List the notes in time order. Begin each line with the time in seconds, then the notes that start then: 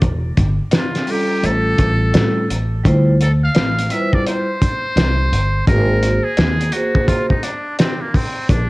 0.02 E1, kick, closed hi-hat
0.37 G1, kick, closed hi-hat
0.71 snare, closed hi-hat
0.77 F4
0.95 snare, closed hi-hat
1.06 G3 C#4 F4 A4, open hi-hat
1.11 G4
1.43 A1 A4, closed hi-hat
1.78 A1, kick, closed hi-hat
2.12 A2 G3 C#4 F4 A4, snare, closed hi-hat
2.50 A1, closed hi-hat
2.83 D2 G3 E4 F4 C5, kick, closed hi-hat
3.21 A4, closed hi-hat
3.44 F5
3.55 A1, snare, closed hi-hat
3.79 closed hi-hat
3.89 G3 E4 F4 B4 E5, closed hi-hat
3.99 C5
4.13 D5, kick
4.27 C5, closed hi-hat
4.62 kick, closed hi-hat
4.96 C2, snare, closed hi-hat
5.32 G1, closed hi-hat
5.66 G#1 A#3 F#4 G#4 A#4, kick, closed hi-hat
5.76 C5
6.03 closed hi-hat
6.24 G#4
6.37 D#2, snare, closed hi-hat
6.61 closed hi-hat
6.72 A#3 F#4 G#4 C5, closed hi-hat
6.95 kick
7.08 F4, kick, closed hi-hat
7.29 D#4, kick
7.43 D4, closed hi-hat
7.79 C4, snare, closed hi-hat
8.01 A#3
8.14 C4, kick, open hi-hat
8.49 A#1 D4, kick, closed hi-hat